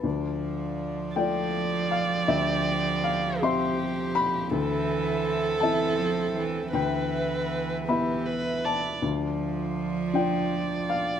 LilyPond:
<<
  \new Staff \with { instrumentName = "Upright piano" } { \time 6/8 \key d \dorian \tempo 4. = 53 << { a''4. g''4 f''8 | e''4 f''8 c'''4 b''8~ | b''4. a''4. | g''4. b''4 a''8~ |
a''4. g''4 f''8 | } \\ { d,4. <a f' d''>4. | d,4. <c' g' e''>4. | d,4. <c' e' e''>4. | d,4. <b e' e''>4. |
d,4. <d' f' d''>4. | } >> }
  \new Staff \with { instrumentName = "Viola" } { \time 6/8 \key d \dorian r4. d''4.~ | d''4. g'4. | a'2. | b'4. g'8 b'8 d''8 |
r4. d''4. | }
  \new Staff \with { instrumentName = "Harmonium" } { \time 6/8 \key d \dorian << { <d' d''>2. | <c' g''>2.~ | <c' g''>2. | <b e''>2. |
<d' d''>2. | } \\ { f'2. | g'2. | e'2.~ | e'2. |
f'2. | } >> }
  \new Staff \with { instrumentName = "Cello" } { \clef bass \time 6/8 \key d \dorian f2.~ | f2. | e4. e8 f8 e8 | e2~ e8 r8 |
f2. | }
>>